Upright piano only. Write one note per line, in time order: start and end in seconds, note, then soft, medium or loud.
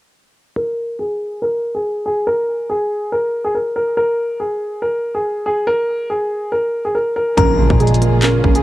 0.56 0.97 A#4 loud
0.99 1.39 G#4 medium
1.42 1.72 A#4 medium
1.74 2.04 G#4 medium
2.06 2.24 G#4 medium
2.27 2.67 A#4 loud
2.69 3.09 G#4 medium
3.12 3.43 A#4 medium
3.44 3.53 G#4 medium
3.55 3.73 A#4 medium
3.76 3.94 A#4 medium
3.97 4.37 A#4 loud
4.40 4.80 G#4 medium
4.82 5.13 A#4 medium
5.15 5.44 G#4 medium
5.46 5.64 G#4 medium
5.67 6.07 A#4 loud
6.10 6.50 G#4 medium
6.52 6.83 A#4 medium
6.85 6.93 G#4 medium
6.95 7.13 A#4 medium
7.16 7.34 A#4 medium
7.37 7.77 A#4 loud
7.80 8.20 G#4 medium
8.23 8.53 A#4 medium
8.55 8.63 G#4 medium